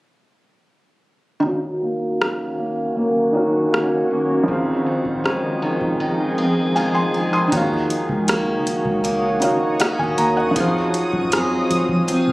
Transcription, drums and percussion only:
2.22 cross-stick medium
3.74 cross-stick loud
4.48 kick loud
5.05 kick medium
5.26 cross-stick loud
5.81 kick medium
7.52 kick loud
7.52 closed hi-hat medium
7.90 closed hi-hat medium
8.09 kick medium
8.28 cross-stick loud
8.28 closed hi-hat medium
8.67 closed hi-hat medium
8.85 kick loud
9.05 closed hi-hat medium
9.42 closed hi-hat medium
9.80 cross-stick loud
9.80 closed hi-hat medium
9.99 kick medium
10.18 closed hi-hat medium
10.56 kick loud
10.56 closed hi-hat medium
10.94 closed hi-hat medium
11.13 kick medium
11.32 cross-stick loud
11.32 closed hi-hat medium
11.71 closed hi-hat medium
11.89 kick medium
12.08 closed hi-hat medium

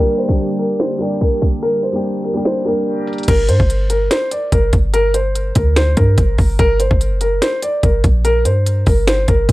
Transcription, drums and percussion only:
0.18 closed hi-hat medium
0.29 kick medium
0.39 closed hi-hat medium
0.59 closed hi-hat medium
0.80 snare loud
0.80 closed hi-hat medium
1.00 closed hi-hat medium
1.21 kick medium
1.21 closed hi-hat medium
1.42 kick loud
1.42 closed hi-hat medium
1.63 closed hi-hat medium
1.83 closed hi-hat medium
2.04 closed hi-hat medium
2.24 closed hi-hat medium
2.45 snare loud
2.45 closed hi-hat medium
2.66 closed hi-hat medium
2.87 closed hi-hat medium
3.07 closed hi-hat medium
3.13 closed hi-hat medium
3.18 closed hi-hat medium
3.23 closed hi-hat medium
3.28 kick loud
3.28 closed hi-hat medium
3.28 crash loud
3.49 closed hi-hat medium
3.60 kick medium
3.70 closed hi-hat medium
3.90 closed hi-hat medium
4.11 snare loud
4.11 closed hi-hat medium
4.31 closed hi-hat medium
4.52 kick medium
4.52 closed hi-hat medium
4.73 kick loud
4.73 closed hi-hat medium
4.94 closed hi-hat medium
5.14 closed hi-hat medium
5.35 closed hi-hat medium
5.55 kick loud
5.55 closed hi-hat medium
5.76 snare loud
5.76 closed hi-hat medium
5.97 kick medium
5.97 closed hi-hat medium
6.18 kick medium
6.18 closed hi-hat medium
6.38 kick loud
6.38 open hi-hat medium
6.59 kick loud
6.59 closed hi-hat medium
6.80 closed hi-hat medium
6.91 kick medium
7.01 closed hi-hat medium
7.21 closed hi-hat medium
7.42 snare loud
7.42 closed hi-hat medium
7.62 closed hi-hat medium
7.83 kick medium
7.83 closed hi-hat medium
8.04 kick loud
8.04 closed hi-hat medium
8.25 closed hi-hat medium
8.45 closed hi-hat medium
8.66 closed hi-hat medium
8.86 kick loud
8.86 open hi-hat medium
9.07 snare loud
9.07 closed hi-hat medium
9.28 kick medium
9.28 closed hi-hat medium
9.49 kick medium
9.49 closed hi-hat medium

